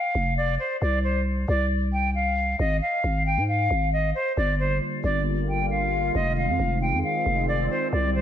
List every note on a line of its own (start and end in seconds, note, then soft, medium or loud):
0.00 0.34 F5 medium
0.15 0.58 F1 loud
0.37 0.55 D5 loud
0.59 0.77 C5 medium
0.82 1.46 C2 loud
0.82 0.99 D5 medium
1.04 1.22 C5 medium
1.48 2.55 C2 loud
1.48 1.66 D5 medium
1.93 2.10 G5 medium
2.15 2.57 F5 medium
2.59 2.81 G#1 loud
2.59 2.77 D#5 loud
2.82 3.23 F5 medium
3.04 3.39 G#1 loud
3.26 3.44 G5 medium
3.37 3.69 G#2 loud
3.48 3.90 F5 medium
3.71 4.13 G#1 loud
3.93 4.10 D#5 loud
4.15 4.33 C5 medium
4.37 4.80 G1 loud
4.37 6.13 D3 medium
4.37 6.13 G3 medium
4.37 6.13 A#3 medium
4.37 7.89 F4 medium
4.37 4.55 D5 loud
4.60 4.77 C5 medium
5.04 6.11 G1 loud
5.04 5.21 D5 loud
5.49 5.66 G5 medium
5.70 6.12 F5 medium
6.15 6.50 F1 loud
6.15 7.91 D#3 medium
6.15 7.91 G#3 medium
6.15 8.21 C4 medium
6.15 6.33 D#5 medium
6.37 6.79 F5 medium
6.48 6.59 F2 loud
6.59 6.94 F1 loud
6.82 6.99 G5 medium
6.93 7.03 F2 loud
7.04 7.46 F5 medium
7.26 7.69 F1 loud
7.48 7.66 D5 loud
7.70 7.88 C5 medium
7.93 8.21 C2 loud
7.93 8.21 D3 medium
7.93 8.21 G3 medium
7.93 8.21 G4 medium
7.93 8.10 D5 loud
8.15 8.21 C5 medium